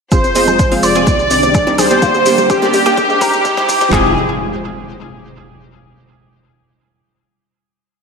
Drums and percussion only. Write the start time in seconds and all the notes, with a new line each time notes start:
0.12 kick, closed hi-hat, maracas
0.24 closed hi-hat, maracas
0.35 open hi-hat, high conga, maracas
0.47 closed hi-hat, low conga, maracas
0.59 kick, closed hi-hat, maracas
0.71 open hi-hat, high conga, maracas
0.83 open hi-hat, maracas
0.95 closed hi-hat, high bongo, maracas
1.06 kick, closed hi-hat, high conga, maracas
1.19 maracas
1.31 open hi-hat, maracas
1.43 closed hi-hat, high conga, maracas
1.54 kick, closed hi-hat, maracas
1.67 high bongo, maracas
1.78 open hi-hat, low conga, maracas
1.90 closed hi-hat, high conga, maracas
2.02 kick, closed hi-hat, maracas
2.14 closed hi-hat, maracas
2.26 open hi-hat, high conga, maracas
2.38 closed hi-hat, low conga, maracas
2.50 kick, closed hi-hat, maracas
2.62 closed hi-hat, high conga, maracas
2.73 open hi-hat, maracas
2.86 closed hi-hat, high bongo, maracas
2.97 kick, closed hi-hat, high conga, maracas
3.10 maracas
3.21 kick, open hi-hat, maracas
3.34 closed hi-hat, high conga, maracas
3.45 kick, closed hi-hat, maracas
3.57 kick, maracas
3.69 kick, open hi-hat, low conga, maracas
3.81 kick, closed hi-hat, high conga, maracas
3.93 kick, clap, floor tom